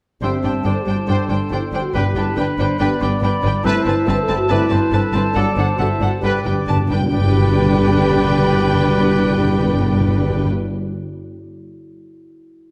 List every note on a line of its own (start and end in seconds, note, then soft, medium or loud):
0.21 0.31 G1 soft
0.21 0.29 G2 soft
0.21 0.37 D3 soft
0.21 0.37 G3 soft
0.21 0.63 C4 medium
0.21 0.30 D4 soft
0.21 0.37 C5 soft
0.21 0.31 C5 soft
0.21 1.11 C5 soft
0.21 0.67 E5 soft
0.21 0.28 G5 soft
0.21 0.31 G5 soft
0.43 0.52 G1 soft
0.43 0.51 G2 soft
0.43 0.52 D4 soft
0.43 0.53 C5 soft
0.43 0.52 G5 soft
0.43 1.50 A5 soft
0.63 0.73 G1 soft
0.63 0.71 G2 soft
0.63 0.74 D4 soft
0.63 0.80 A4 medium
0.63 0.75 C5 soft
0.63 1.08 D5 soft
0.63 0.72 G5 soft
0.83 0.94 G1 soft
0.83 0.94 G2 soft
0.83 0.96 G4 medium
0.87 0.95 D4 soft
0.87 0.97 C5 soft
0.87 0.96 G5 soft
0.96 1.10 E4 medium
1.07 1.16 G1 soft
1.07 1.15 G2 soft
1.07 1.22 D3 soft
1.07 1.22 G3 soft
1.07 1.16 D4 soft
1.07 1.96 A4 soft
1.07 1.23 C5 soft
1.07 1.18 C5 soft
1.07 1.31 D5 soft
1.07 1.16 G5 soft
1.11 1.53 D4 medium
1.29 1.38 G1 soft
1.29 1.38 G2 soft
1.29 1.38 D4 soft
1.29 1.95 C5 soft
1.29 1.40 C5 soft
1.29 1.38 G5 soft
1.50 1.59 G1 soft
1.50 1.58 G2 medium
1.50 1.60 D4 soft
1.50 1.67 E4 medium
1.50 1.61 C5 soft
1.50 1.94 G5 soft
1.50 1.60 G5 soft
1.67 1.81 D4 medium
1.72 1.81 G1 medium
1.72 1.80 G2 soft
1.72 1.82 D4 soft
1.72 1.83 C5 soft
1.72 1.82 G5 soft
1.82 1.95 F#4 medium
1.94 2.03 G1 medium
1.94 2.02 G2 medium
1.94 2.55 G2 medium
1.94 2.09 D3 medium
1.94 2.09 G3 medium
1.94 2.02 D4 soft
1.94 2.38 E4 medium
1.94 2.38 G4 soft
1.94 2.78 B4 soft
1.94 2.09 B4 medium
1.94 2.04 B4 soft
1.94 2.03 G5 medium
1.94 2.19 G5 soft
2.15 2.24 G1 medium
2.15 2.24 G2 medium
2.15 2.24 D4 soft
2.15 2.26 B4 soft
2.15 2.23 G5 soft
2.15 2.36 A5 medium
2.36 2.46 G1 medium
2.36 2.45 G2 medium
2.36 2.80 D4 medium
2.36 2.45 D4 soft
2.36 2.60 B4 medium
2.36 2.45 G5 soft
2.36 3.20 B5 medium
2.40 2.48 B4 soft
2.58 2.66 G1 medium
2.58 2.66 G2 soft
2.58 2.68 D4 soft
2.58 2.67 B4 soft
2.58 2.79 C5 medium
2.58 2.67 G5 soft
2.79 2.89 G1 medium
2.79 2.88 G2 medium
2.79 2.95 D3 medium
2.79 2.95 G3 medium
2.79 3.42 B3 medium
2.79 2.88 D4 soft
2.79 3.04 B4 medium
2.79 2.95 B4 medium
2.79 2.88 B4 medium
2.79 3.22 D5 medium
2.79 2.88 G5 medium
3.01 3.10 G1 medium
3.01 3.09 G2 medium
3.01 3.09 D4 soft
3.01 3.11 B4 soft
3.01 3.67 D5 medium
3.01 3.10 G5 medium
3.21 3.31 G1 medium
3.21 3.30 G2 medium
3.21 3.30 D4 medium
3.21 3.32 B4 medium
3.21 3.65 D5 medium
3.21 3.32 G5 medium
3.21 3.64 B5 medium
3.42 3.52 G1 medium
3.42 3.50 G2 medium
3.42 3.50 D4 medium
3.42 3.51 B4 medium
3.42 3.54 G5 medium
3.63 3.74 G1 medium
3.63 3.72 G2 medium
3.63 3.79 C3 medium
3.63 3.79 A3 medium
3.63 3.72 C4 medium
3.63 4.05 E4 medium
3.63 3.80 B4 medium
3.63 3.74 B4 medium
3.63 4.49 C5 medium
3.63 4.07 E5 medium
3.63 6.25 A5 medium
3.67 3.75 A5 medium
3.85 3.94 G1 medium
3.85 3.93 G2 medium
3.85 3.93 C4 medium
3.85 3.95 B4 medium
3.85 3.96 A5 medium
4.07 4.17 G1 medium
4.07 4.15 G2 medium
4.07 4.15 C4 medium
4.07 4.15 B4 medium
4.07 4.22 B4 loud
4.07 4.53 E5 medium
4.07 4.16 A5 medium
4.23 4.36 A4 medium
4.28 4.37 G1 medium
4.28 4.37 G2 medium
4.28 4.37 C4 medium
4.28 4.37 B4 medium
4.28 4.36 A5 medium
4.36 4.51 F#4 medium
4.48 4.57 G1 medium
4.48 4.58 G2 medium
4.48 4.63 C3 medium
4.48 4.64 A3 medium
4.48 4.57 C4 medium
4.48 5.36 E4 medium
4.48 4.65 B4 medium
4.48 4.92 B4 medium
4.48 4.58 B4 medium
4.48 4.74 D5 medium
4.48 4.57 A5 medium
4.69 4.79 G1 medium
4.69 4.78 G2 medium
4.69 4.79 C4 soft
4.69 4.78 B4 medium
4.69 4.95 C5 medium
4.69 4.77 A5 medium
4.91 4.99 G1 medium
4.91 5.00 G2 medium
4.91 5.01 C4 medium
4.91 5.35 A4 medium
4.91 5.01 B4 medium
4.91 5.16 B4 medium
4.91 5.01 A5 medium
5.12 5.21 G1 medium
5.12 5.21 G2 medium
5.12 5.22 C4 medium
5.12 5.23 B4 medium
5.12 5.36 C5 medium
5.12 5.20 A5 medium
5.32 5.43 G2 medium
5.32 5.49 D3 medium
5.32 5.49 F#3 medium
5.32 5.77 D4 medium
5.32 5.50 A4 medium
5.32 5.43 A4 medium
5.32 5.43 F#5 medium
5.36 5.44 G1 medium
5.36 5.44 D4 medium
5.36 5.59 A4 medium
5.36 5.78 D5 medium
5.57 5.65 G1 medium
5.57 5.65 G2 medium
5.57 5.66 D4 medium
5.57 5.66 A4 medium
5.57 6.23 C5 medium
5.57 5.67 F#5 medium
5.77 5.87 G1 medium
5.77 5.87 G2 medium
5.77 5.87 D4 medium
5.77 5.92 F#4 medium
5.77 5.89 A4 medium
5.77 6.10 E5 medium
5.77 5.87 F#5 soft
5.91 6.07 E4 medium
6.00 6.09 G1 medium
6.00 6.08 G2 soft
6.00 6.09 D4 soft
6.00 6.11 A4 soft
6.00 6.10 F#5 soft
6.05 6.22 F#4 medium
6.20 6.30 G2 medium
6.20 6.38 D3 medium
6.20 6.38 G3 medium
6.20 6.32 D4 soft
6.20 6.65 G4 medium
6.20 6.89 B4 soft
6.20 6.39 B4 medium
6.20 6.89 D5 medium
6.20 6.32 G5 soft
6.24 6.32 G1 soft
6.24 6.32 B4 soft
6.24 6.91 G5 soft
6.30 6.37 G2 soft
6.38 6.44 G2 soft
6.45 6.55 G1 medium
6.45 6.53 G2 medium
6.45 6.51 G2 soft
6.45 6.53 D4 soft
6.45 6.53 B4 soft
6.45 6.54 G5 soft
6.52 6.59 G2 soft
6.60 6.67 G2 soft
6.67 6.76 G1 soft
6.67 6.75 G2 medium
6.67 6.77 D4 soft
6.67 6.78 B4 soft
6.67 6.76 A5 medium
6.77 6.83 G2 medium
6.85 6.92 G2 medium
6.89 6.99 G1 medium
6.89 6.97 G2 medium
6.89 6.99 D4 soft
6.89 6.99 B4 soft
6.89 7.09 G5 soft
6.93 7.00 G2 medium
7.01 7.08 G2 medium
7.10 10.47 G1 medium
7.10 10.46 G2 medium
7.10 7.19 G2 medium
7.10 10.44 D3 medium
7.10 10.45 G3 medium
7.10 10.47 D4 medium
7.10 10.47 G4 medium
7.10 10.47 B4 medium
7.10 10.48 B4 medium
7.10 10.47 D5 medium
7.10 10.45 G5 medium
7.10 10.46 G5 medium
7.19 7.26 G2 medium
7.26 7.33 G2 medium
7.33 7.39 G2 medium
7.39 7.46 G2 medium
7.46 7.53 G2 medium
7.53 7.60 G2 medium
7.60 7.66 G2 medium
7.66 7.73 G2 medium
7.74 7.80 G2 medium
7.80 7.87 G2 medium
7.88 7.95 G2 medium
7.95 8.02 G2 medium
8.03 8.10 G2 medium
8.10 8.17 G2 medium
8.17 8.24 G2 medium
8.24 8.31 G2 medium
8.31 8.38 G2 medium
8.39 8.46 G2 medium
8.46 8.53 G2 medium
8.53 8.60 G2 medium
8.60 8.67 G2 medium
8.67 8.74 G2 medium
8.74 8.81 G2 medium
8.81 8.88 G2 medium
8.88 8.95 G2 medium
8.95 9.02 G2 medium
9.02 9.09 G2 medium
9.10 9.16 G2 medium
9.16 9.23 G2 medium
9.24 9.31 G2 medium
9.31 9.38 G2 medium
9.38 9.45 G2 medium
9.45 9.52 G2 medium
9.52 9.59 G2 medium
9.59 9.66 G2 medium
9.66 9.73 G2 medium
9.73 9.80 G2 medium
9.80 9.87 G2 medium
9.87 9.94 G2 medium
9.94 10.01 G2 medium
10.01 10.08 G2 medium
10.08 10.15 G2 medium
10.16 10.23 G2 medium
10.23 10.30 G2 medium
10.30 10.37 G2 medium
10.37 10.44 G2 medium
10.44 10.51 G2 medium